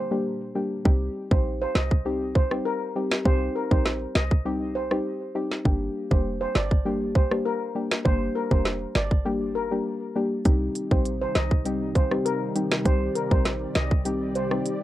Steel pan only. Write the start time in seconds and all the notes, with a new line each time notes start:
1.31 C5
1.62 C5
1.75 D#5
2.36 C5
2.65 A#4
3.26 C5
3.55 A#4
3.71 C5
4.15 D#5
4.75 C5
6.11 C5
6.41 C5
6.55 D5
7.15 C5
7.46 A#4
8.05 C5
8.35 A#4
8.51 C5
8.95 D5
9.55 A#4
10.91 C5
11.22 C5
11.36 D#5
11.96 C5
12.25 A#4
12.85 C5
13.15 A#4
13.31 C5
13.75 D#5
14.36 C5